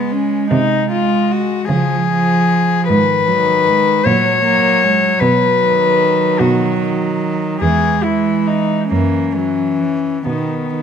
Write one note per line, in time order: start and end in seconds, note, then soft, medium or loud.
0.00 0.36 C#3 medium
0.00 0.51 G#3 soft
0.00 1.69 G#3 medium
0.00 0.13 B3 medium
0.12 0.51 C#4 medium
0.51 1.53 C3 medium
0.51 0.90 D#4 medium
0.92 1.69 G#3 soft
0.92 1.33 F4 medium
1.31 1.69 F#4 medium
1.69 2.73 C#3 medium
1.69 2.89 F3 medium
1.69 2.10 F3 soft
1.69 2.87 G#4 medium
2.11 2.89 F3 soft
2.87 3.91 G#2 medium
2.87 3.28 D#3 medium
2.87 4.07 B4 medium
3.27 3.68 F#3 medium
3.31 4.06 D#3 soft
3.67 4.06 G#3 soft
4.05 5.06 A#2 medium
4.05 4.44 F#3 medium
4.05 4.45 F#3 soft
4.05 5.22 C#5 medium
4.45 5.20 F#3 soft
4.45 4.86 A#3 medium
4.84 5.21 G#3 soft
5.20 6.24 B2 medium
5.20 7.64 F#3 medium
5.20 6.41 B4 medium
5.63 6.79 D#3 soft
6.40 7.46 B2 medium
6.40 6.80 F#4 medium
6.81 7.61 D#3 soft
7.61 8.74 E2 medium
7.61 8.05 E3 soft
7.61 8.91 G#3 medium
7.61 8.05 G#4 medium
8.04 8.49 E4 medium
8.08 8.91 E3 soft
8.47 8.90 D#4 medium
8.91 10.08 F#2 soft
8.91 9.35 E3 soft
8.91 9.37 A#3 soft
8.91 10.23 C#4 medium
9.35 10.25 E3 soft
9.35 9.82 F#3 soft
9.81 10.27 E3 soft
10.26 10.82 B2 soft
10.26 10.82 D#3 soft
10.26 10.74 D#3 soft
10.26 10.82 B3 soft
10.76 10.82 D#3 soft